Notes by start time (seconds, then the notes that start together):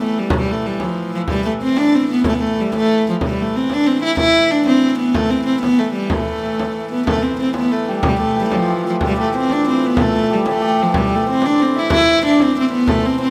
Already playing: A2 E3
0.03 A3
0.18 G3
0.30 frame drum
0.36 G3
0.47 frame drum
0.51 A3
0.62 G3, frame drum
0.80 F3, frame drum
1.15 F3
1.28 G3, frame drum
1.44 A3, frame drum
1.61 C4, frame drum
1.77 D4, frame drum
1.94 C4
2.11 B3
2.24 A3, frame drum
2.34 B3
2.40 A3, frame drum
2.57 G3, frame drum
2.72 frame drum
2.77 A3
2.89 frame drum
3.06 F3, frame drum
3.20 A2 E3, frame drum
3.25 G3
3.37 frame drum
3.41 A3
3.53 C4, frame drum
3.70 D4, frame drum
3.86 C4
4.03 E4
4.17 E4, frame drum
4.33 frame drum
4.50 D4, frame drum
4.66 C4, frame drum
4.98 B3
5.14 A3, frame drum
5.30 C4, frame drum
5.46 C4, frame drum
5.62 B3, frame drum
5.79 A3
5.93 G3
6.10 A3, frame drum
6.59 frame drum
6.91 B3 B4
7.07 A2 E3 A3 A4, frame drum
7.22 C4 C5, frame drum
7.38 C4 C5, frame drum
7.54 B3 B4, frame drum
7.72 A3
7.89 G3 G4
8.03 G3 G4, frame drum
8.20 A3 A4, frame drum
8.35 G4, frame drum
8.40 G3 A3
8.46 G3 G4
8.52 F3 F4, frame drum
8.69 G4
8.85 F4
8.89 F3
9.01 G4, frame drum
9.05 G3
9.17 A3 A4, frame drum
9.34 C4 C5, frame drum
9.50 D4 D5, frame drum
9.68 C4 C5
9.84 B3 B4
9.97 A4, frame drum
10.02 A3
10.15 A4
10.30 G3 G4
10.46 A3 A4, frame drum
10.62 G4, frame drum
10.79 F3, frame drum
10.92 A2 E3 G3 G4, frame drum
11.10 A4, frame drum
11.16 A3
11.26 C4 C5, frame drum
11.42 D4 D5, frame drum
11.60 C4 C5
11.76 E4 E5
11.90 E4 E5, frame drum
12.07 frame drum
12.23 D4 D5, frame drum
12.38 C5, frame drum
12.43 C4
12.53 C5
12.59 C4
12.70 B3 B4
12.87 A3 A4, frame drum
13.02 C4 C5, frame drum
13.18 C5, frame drum
13.22 C4